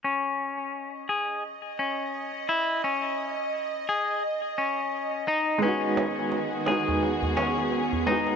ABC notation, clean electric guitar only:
X:1
M:4/4
L:1/8
Q:"Swing 16ths" 1/4=86
K:G#phr
V:1 name="Clean electric guitar"
C3 G z C2 E | C3 G z C2 D | C3 G z C2 D |]